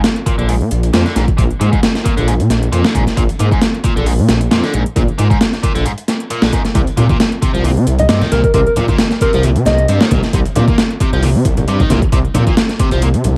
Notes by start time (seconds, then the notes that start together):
0.04 snare, closed hi-hat
0.16 closed hi-hat
0.26 A#2, kick, closed hi-hat
0.38 A#1 D3, closed hi-hat
0.49 G#2, closed hi-hat, open hi-hat
0.61 A#2, closed hi-hat
0.71 A#1, closed hi-hat
0.83 closed hi-hat
0.93 F2 A#2, snare, closed hi-hat
1.06 D3, snare, closed hi-hat
1.16 A#1 G#2, snare, closed hi-hat
1.28 kick, closed hi-hat
1.38 A#1 A#2, kick, closed hi-hat
1.50 closed hi-hat
1.61 G#2 A#2, closed hi-hat
1.72 G#2, kick, closed hi-hat
1.83 snare, closed hi-hat
1.95 snare, closed hi-hat
2.05 A#2, kick, closed hi-hat
2.17 A#1 D3, closed hi-hat
2.28 G#2, closed hi-hat
2.40 A#2, closed hi-hat
2.50 A#1, snare, closed hi-hat
2.63 closed hi-hat
2.72 F2 A#2, closed hi-hat
2.84 D3, snare, closed hi-hat
2.95 A#1 G#2, kick, closed hi-hat
3.07 snare, closed hi-hat
3.17 A#1 A#2, kick, closed hi-hat
3.29 closed hi-hat
3.39 G#2 A#2, closed hi-hat
3.51 G#2, kick, closed hi-hat
3.61 snare, closed hi-hat
3.74 closed hi-hat
3.84 A#2, kick, closed hi-hat
3.96 A#1 D3, closed hi-hat
4.06 G#2, closed hi-hat, open hi-hat
4.19 A#2, closed hi-hat
4.29 A#1, snare, closed hi-hat
4.41 closed hi-hat
4.51 F2 A#2, snare, closed hi-hat
4.63 D3, snare, closed hi-hat
4.74 A#1 G#2, closed hi-hat
4.86 closed hi-hat
4.96 A#1 A#2, kick, closed hi-hat
5.08 closed hi-hat
5.18 G#2 A#2, closed hi-hat
5.30 G#2, kick, closed hi-hat
5.41 snare, closed hi-hat
5.53 snare, closed hi-hat
5.63 A#2, kick, closed hi-hat
5.75 A#1 D3, closed hi-hat
5.85 G#2, closed hi-hat
5.98 closed hi-hat
6.08 snare, closed hi-hat
6.20 closed hi-hat
6.30 A#2, closed hi-hat
6.42 A#1 D3, snare, closed hi-hat
6.53 G#2, kick, closed hi-hat
6.65 snare, closed hi-hat
6.75 C2 C3, kick, closed hi-hat
6.87 closed hi-hat
6.97 A#2 C3, closed hi-hat, low conga
7.09 A#2, kick, closed hi-hat, high conga
7.20 snare, closed hi-hat
7.32 closed hi-hat
7.42 C3, kick, closed hi-hat
7.54 C2 F3, closed hi-hat
7.64 A#2, closed hi-hat, open hi-hat, high conga
7.77 C3, closed hi-hat
7.87 C2, closed hi-hat
7.99 D#5, closed hi-hat, low conga
8.09 G2 C3 D#5, snare, closed hi-hat
8.21 D#3, snare, closed hi-hat, low conga
8.32 C2 A#2 A#4, snare, closed hi-hat, high conga
8.44 A#4, kick, closed hi-hat
8.54 C2 C3 A#4, kick, closed hi-hat
8.67 A#4, closed hi-hat
8.76 A#2 C3, closed hi-hat, low conga
8.88 A#2, kick, closed hi-hat, high conga
8.98 snare, closed hi-hat
9.11 snare, closed hi-hat
9.21 C3 A#4, kick, closed hi-hat
9.33 C2 F3, closed hi-hat
9.43 A#2, closed hi-hat, high conga
9.56 C3, closed hi-hat
9.65 C2 D#5, snare, closed hi-hat, low conga
9.78 closed hi-hat
9.88 G2 C3, closed hi-hat
10.01 D#3, snare, closed hi-hat
10.11 C2 A#2, kick, closed hi-hat, high conga, low conga
10.23 snare, closed hi-hat
10.33 C2 C3, kick, closed hi-hat
10.45 closed hi-hat
10.55 A#2 C3, closed hi-hat, low conga
10.68 A#2, kick, closed hi-hat, high conga
10.78 snare, closed hi-hat
10.91 closed hi-hat
11.00 C3, kick, closed hi-hat
11.12 C2 F3, closed hi-hat
11.23 A#2, closed hi-hat, open hi-hat, high conga
11.35 C3, closed hi-hat
11.45 C2, kick, closed hi-hat
11.57 closed hi-hat, low conga
11.67 G2 C3, closed hi-hat
11.80 D#3, kick, closed hi-hat, low conga
11.90 C2 A#2, snare, closed hi-hat, high conga
12.02 kick, closed hi-hat
12.12 C2 C3, kick, closed hi-hat
12.25 closed hi-hat
12.34 A#2 C3, closed hi-hat, low conga
12.47 A#2, kick, closed hi-hat, high conga
12.57 snare, closed hi-hat
12.69 snare, closed hi-hat
12.79 C3, kick, closed hi-hat
12.91 C2 F3, closed hi-hat
13.02 A#2, closed hi-hat, high conga
13.14 C3, closed hi-hat
13.24 C2, closed hi-hat, low conga